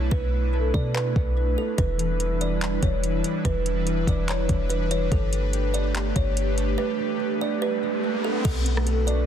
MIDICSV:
0, 0, Header, 1, 7, 480
1, 0, Start_track
1, 0, Key_signature, 2, "minor"
1, 0, Tempo, 416667
1, 134, Time_signature, 4, 2, 24, 8
1, 10668, End_track
2, 0, Start_track
2, 0, Title_t, "Kalimba"
2, 0, Program_c, 0, 108
2, 131, Note_on_c, 0, 71, 97
2, 809, Note_off_c, 0, 71, 0
2, 856, Note_on_c, 0, 74, 84
2, 1083, Note_off_c, 0, 74, 0
2, 1095, Note_on_c, 0, 71, 99
2, 1772, Note_off_c, 0, 71, 0
2, 1819, Note_on_c, 0, 69, 78
2, 2045, Note_off_c, 0, 69, 0
2, 2052, Note_on_c, 0, 71, 95
2, 2730, Note_off_c, 0, 71, 0
2, 2779, Note_on_c, 0, 74, 79
2, 3228, Note_off_c, 0, 74, 0
2, 3261, Note_on_c, 0, 73, 73
2, 3486, Note_off_c, 0, 73, 0
2, 3977, Note_on_c, 0, 71, 108
2, 4652, Note_off_c, 0, 71, 0
2, 4706, Note_on_c, 0, 74, 75
2, 4928, Note_off_c, 0, 74, 0
2, 4946, Note_on_c, 0, 73, 81
2, 5391, Note_off_c, 0, 73, 0
2, 5409, Note_on_c, 0, 71, 76
2, 5639, Note_off_c, 0, 71, 0
2, 5660, Note_on_c, 0, 73, 84
2, 5885, Note_off_c, 0, 73, 0
2, 5900, Note_on_c, 0, 69, 86
2, 6574, Note_off_c, 0, 69, 0
2, 6611, Note_on_c, 0, 74, 77
2, 7063, Note_off_c, 0, 74, 0
2, 7099, Note_on_c, 0, 73, 83
2, 7325, Note_off_c, 0, 73, 0
2, 7809, Note_on_c, 0, 71, 95
2, 8488, Note_off_c, 0, 71, 0
2, 8541, Note_on_c, 0, 74, 80
2, 8766, Note_off_c, 0, 74, 0
2, 8778, Note_on_c, 0, 71, 94
2, 9453, Note_off_c, 0, 71, 0
2, 9498, Note_on_c, 0, 69, 81
2, 9719, Note_off_c, 0, 69, 0
2, 9732, Note_on_c, 0, 69, 103
2, 10410, Note_off_c, 0, 69, 0
2, 10449, Note_on_c, 0, 74, 82
2, 10668, Note_off_c, 0, 74, 0
2, 10668, End_track
3, 0, Start_track
3, 0, Title_t, "Analog synth pad"
3, 0, Program_c, 1, 89
3, 0, Note_on_c, 1, 57, 81
3, 0, Note_on_c, 1, 62, 73
3, 0, Note_on_c, 1, 64, 75
3, 0, Note_on_c, 1, 71, 92
3, 2008, Note_off_c, 1, 57, 0
3, 2008, Note_off_c, 1, 62, 0
3, 2009, Note_off_c, 1, 71, 0
3, 2016, Note_off_c, 1, 64, 0
3, 2053, Note_on_c, 1, 62, 74
3, 2053, Note_on_c, 1, 64, 75
3, 2054, Note_on_c, 1, 55, 82
3, 2054, Note_on_c, 1, 71, 88
3, 5855, Note_off_c, 1, 64, 0
3, 5856, Note_off_c, 1, 55, 0
3, 5896, Note_on_c, 1, 67, 77
3, 5897, Note_on_c, 1, 57, 78
3, 9688, Note_off_c, 1, 62, 0
3, 9688, Note_off_c, 1, 71, 0
3, 9696, Note_off_c, 1, 67, 0
3, 9697, Note_off_c, 1, 57, 0
3, 9735, Note_on_c, 1, 62, 75
3, 9735, Note_on_c, 1, 66, 73
3, 9735, Note_on_c, 1, 71, 91
3, 9736, Note_on_c, 1, 57, 81
3, 10668, Note_off_c, 1, 57, 0
3, 10668, Note_off_c, 1, 62, 0
3, 10668, Note_off_c, 1, 66, 0
3, 10668, Note_off_c, 1, 71, 0
3, 10668, End_track
4, 0, Start_track
4, 0, Title_t, "Harp"
4, 0, Program_c, 2, 46
4, 0, Note_on_c, 2, 59, 83
4, 0, Note_on_c, 2, 62, 83
4, 0, Note_on_c, 2, 69, 82
4, 130, Note_off_c, 2, 59, 0
4, 135, Note_on_c, 2, 59, 94
4, 375, Note_off_c, 2, 59, 0
4, 379, Note_on_c, 2, 59, 71
4, 613, Note_off_c, 2, 69, 0
4, 617, Note_on_c, 2, 69, 90
4, 850, Note_off_c, 2, 62, 0
4, 855, Note_on_c, 2, 62, 76
4, 1334, Note_off_c, 2, 59, 0
4, 1339, Note_on_c, 2, 59, 83
4, 2054, Note_on_c, 2, 52, 90
4, 2281, Note_off_c, 2, 52, 0
4, 2295, Note_on_c, 2, 52, 75
4, 2537, Note_on_c, 2, 64, 85
4, 2766, Note_off_c, 2, 62, 0
4, 2770, Note_on_c, 2, 62, 82
4, 3147, Note_off_c, 2, 69, 0
4, 3243, Note_off_c, 2, 52, 0
4, 3256, Note_on_c, 2, 52, 82
4, 3959, Note_off_c, 2, 52, 0
4, 3972, Note_on_c, 2, 52, 84
4, 4203, Note_off_c, 2, 52, 0
4, 4217, Note_on_c, 2, 52, 82
4, 4447, Note_off_c, 2, 64, 0
4, 4451, Note_on_c, 2, 64, 84
4, 4688, Note_off_c, 2, 62, 0
4, 4693, Note_on_c, 2, 62, 80
4, 4917, Note_off_c, 2, 59, 0
4, 5163, Note_off_c, 2, 52, 0
4, 5177, Note_on_c, 2, 52, 83
4, 5891, Note_on_c, 2, 55, 92
4, 5952, Note_off_c, 2, 52, 0
4, 6124, Note_off_c, 2, 55, 0
4, 6137, Note_on_c, 2, 55, 75
4, 6371, Note_on_c, 2, 67, 83
4, 6612, Note_on_c, 2, 59, 71
4, 7083, Note_off_c, 2, 55, 0
4, 7097, Note_on_c, 2, 55, 80
4, 7460, Note_off_c, 2, 64, 0
4, 7799, Note_off_c, 2, 55, 0
4, 7813, Note_on_c, 2, 55, 98
4, 7918, Note_off_c, 2, 62, 0
4, 8041, Note_off_c, 2, 55, 0
4, 8055, Note_on_c, 2, 55, 76
4, 8288, Note_off_c, 2, 67, 0
4, 8293, Note_on_c, 2, 67, 88
4, 8530, Note_off_c, 2, 59, 0
4, 8535, Note_on_c, 2, 59, 81
4, 8998, Note_off_c, 2, 55, 0
4, 9012, Note_on_c, 2, 55, 78
4, 9734, Note_off_c, 2, 59, 0
4, 9738, Note_on_c, 2, 59, 90
4, 9792, Note_off_c, 2, 55, 0
4, 9976, Note_off_c, 2, 59, 0
4, 9981, Note_on_c, 2, 59, 77
4, 10209, Note_on_c, 2, 69, 81
4, 10460, Note_on_c, 2, 62, 85
4, 10668, Note_off_c, 2, 59, 0
4, 10668, Note_off_c, 2, 62, 0
4, 10668, Note_off_c, 2, 67, 0
4, 10668, Note_off_c, 2, 69, 0
4, 10668, End_track
5, 0, Start_track
5, 0, Title_t, "808-style bass"
5, 0, Program_c, 3, 38
5, 135, Note_on_c, 3, 35, 108
5, 826, Note_off_c, 3, 35, 0
5, 853, Note_on_c, 3, 47, 106
5, 1314, Note_off_c, 3, 47, 0
5, 1336, Note_on_c, 3, 35, 109
5, 1796, Note_off_c, 3, 35, 0
5, 2055, Note_on_c, 3, 28, 109
5, 3208, Note_off_c, 3, 28, 0
5, 3256, Note_on_c, 3, 28, 103
5, 3716, Note_off_c, 3, 28, 0
5, 3974, Note_on_c, 3, 28, 113
5, 4665, Note_off_c, 3, 28, 0
5, 4693, Note_on_c, 3, 28, 105
5, 5154, Note_off_c, 3, 28, 0
5, 5176, Note_on_c, 3, 28, 104
5, 5866, Note_off_c, 3, 28, 0
5, 5895, Note_on_c, 3, 31, 109
5, 7048, Note_off_c, 3, 31, 0
5, 7096, Note_on_c, 3, 31, 112
5, 7787, Note_off_c, 3, 31, 0
5, 9735, Note_on_c, 3, 35, 113
5, 10668, Note_off_c, 3, 35, 0
5, 10668, End_track
6, 0, Start_track
6, 0, Title_t, "Riser"
6, 0, Program_c, 4, 103
6, 7814, Note_on_c, 4, 60, 84
6, 9734, Note_off_c, 4, 60, 0
6, 10668, End_track
7, 0, Start_track
7, 0, Title_t, "Drums"
7, 135, Note_on_c, 9, 36, 117
7, 250, Note_off_c, 9, 36, 0
7, 853, Note_on_c, 9, 36, 88
7, 968, Note_off_c, 9, 36, 0
7, 1104, Note_on_c, 9, 39, 116
7, 1219, Note_off_c, 9, 39, 0
7, 1336, Note_on_c, 9, 36, 91
7, 1451, Note_off_c, 9, 36, 0
7, 2054, Note_on_c, 9, 42, 76
7, 2055, Note_on_c, 9, 36, 117
7, 2169, Note_off_c, 9, 42, 0
7, 2170, Note_off_c, 9, 36, 0
7, 2296, Note_on_c, 9, 42, 74
7, 2411, Note_off_c, 9, 42, 0
7, 2534, Note_on_c, 9, 42, 75
7, 2650, Note_off_c, 9, 42, 0
7, 2777, Note_on_c, 9, 42, 75
7, 2892, Note_off_c, 9, 42, 0
7, 3011, Note_on_c, 9, 42, 88
7, 3025, Note_on_c, 9, 39, 119
7, 3127, Note_off_c, 9, 42, 0
7, 3140, Note_off_c, 9, 39, 0
7, 3255, Note_on_c, 9, 42, 71
7, 3256, Note_on_c, 9, 36, 91
7, 3370, Note_off_c, 9, 42, 0
7, 3372, Note_off_c, 9, 36, 0
7, 3497, Note_on_c, 9, 42, 82
7, 3612, Note_off_c, 9, 42, 0
7, 3736, Note_on_c, 9, 42, 76
7, 3851, Note_off_c, 9, 42, 0
7, 3974, Note_on_c, 9, 36, 119
7, 3974, Note_on_c, 9, 42, 72
7, 4089, Note_off_c, 9, 42, 0
7, 4090, Note_off_c, 9, 36, 0
7, 4216, Note_on_c, 9, 42, 75
7, 4331, Note_off_c, 9, 42, 0
7, 4454, Note_on_c, 9, 42, 73
7, 4570, Note_off_c, 9, 42, 0
7, 4693, Note_on_c, 9, 36, 86
7, 4697, Note_on_c, 9, 42, 71
7, 4808, Note_off_c, 9, 36, 0
7, 4812, Note_off_c, 9, 42, 0
7, 4931, Note_on_c, 9, 42, 88
7, 4945, Note_on_c, 9, 39, 119
7, 5046, Note_off_c, 9, 42, 0
7, 5060, Note_off_c, 9, 39, 0
7, 5174, Note_on_c, 9, 42, 70
7, 5176, Note_on_c, 9, 36, 88
7, 5289, Note_off_c, 9, 42, 0
7, 5292, Note_off_c, 9, 36, 0
7, 5417, Note_on_c, 9, 42, 82
7, 5532, Note_off_c, 9, 42, 0
7, 5656, Note_on_c, 9, 42, 79
7, 5771, Note_off_c, 9, 42, 0
7, 5895, Note_on_c, 9, 36, 116
7, 5895, Note_on_c, 9, 42, 74
7, 6010, Note_off_c, 9, 36, 0
7, 6010, Note_off_c, 9, 42, 0
7, 6136, Note_on_c, 9, 42, 72
7, 6251, Note_off_c, 9, 42, 0
7, 6374, Note_on_c, 9, 42, 77
7, 6490, Note_off_c, 9, 42, 0
7, 6617, Note_on_c, 9, 42, 75
7, 6732, Note_off_c, 9, 42, 0
7, 6851, Note_on_c, 9, 42, 92
7, 6864, Note_on_c, 9, 39, 118
7, 6966, Note_off_c, 9, 42, 0
7, 6979, Note_off_c, 9, 39, 0
7, 7094, Note_on_c, 9, 42, 72
7, 7097, Note_on_c, 9, 36, 88
7, 7209, Note_off_c, 9, 42, 0
7, 7212, Note_off_c, 9, 36, 0
7, 7337, Note_on_c, 9, 42, 82
7, 7452, Note_off_c, 9, 42, 0
7, 7577, Note_on_c, 9, 42, 76
7, 7692, Note_off_c, 9, 42, 0
7, 9734, Note_on_c, 9, 49, 98
7, 9735, Note_on_c, 9, 36, 127
7, 9735, Note_on_c, 9, 42, 78
7, 9849, Note_off_c, 9, 49, 0
7, 9850, Note_off_c, 9, 36, 0
7, 9850, Note_off_c, 9, 42, 0
7, 9976, Note_on_c, 9, 42, 80
7, 10091, Note_off_c, 9, 42, 0
7, 10106, Note_on_c, 9, 37, 96
7, 10214, Note_on_c, 9, 42, 80
7, 10221, Note_off_c, 9, 37, 0
7, 10329, Note_off_c, 9, 42, 0
7, 10456, Note_on_c, 9, 42, 75
7, 10572, Note_off_c, 9, 42, 0
7, 10668, End_track
0, 0, End_of_file